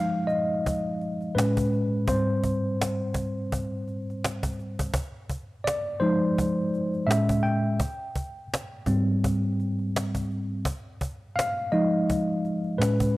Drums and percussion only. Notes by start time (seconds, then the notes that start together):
0.29 cajon slap
0.66 cajon bass
1.01 cajon slap
1.21 cajon slap
1.38 cajon slap
1.57 cajon bass
1.73 cajon slap
2.08 cajon bass
2.44 cajon bass
2.81 cajon slap
3.14 cajon bass
3.52 cajon bass
3.88 cajon slap
4.10 cajon slap
4.24 cajon slap
4.43 cajon bass
4.59 cajon slap
4.79 cajon bass
4.94 cajon bass
5.29 cajon bass
5.67 cajon slap
6.01 cajon slap
6.38 cajon bass
6.74 cajon slap
6.94 cajon slap
7.11 cajon slap
7.29 cajon bass
7.45 cajon slap
7.80 cajon bass
8.16 cajon bass
8.54 cajon slap
8.86 cajon bass
9.24 cajon bass
9.60 cajon slap
9.79 cajon slap
9.96 cajon slap
10.15 cajon bass
10.31 cajon slap
10.65 cajon bass
11.01 cajon bass
11.39 cajon slap
11.72 cajon slap
12.10 cajon bass
12.45 cajon slap
12.64 cajon slap
12.82 cajon slap
13.00 cajon bass